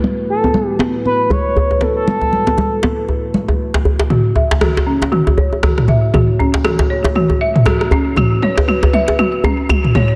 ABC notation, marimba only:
X:1
M:4/4
L:1/8
Q:"Swing 16ths" 1/4=118
K:F#m
V:1 name="Marimba"
z8 | z8 | F e F C F c F e | F C F c F e F C |
F c F e F C F c |]